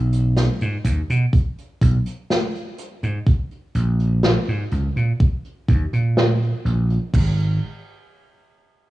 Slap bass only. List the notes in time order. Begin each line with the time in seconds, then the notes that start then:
Already playing: B1
0.61 G#2
0.85 D#2
1.10 B2
1.82 B1
3.03 G#2
3.75 A#1
4.48 G#2
4.72 C#2
4.96 A#2
5.69 D#2
5.93 A#2
6.65 A#1
7.14 G#1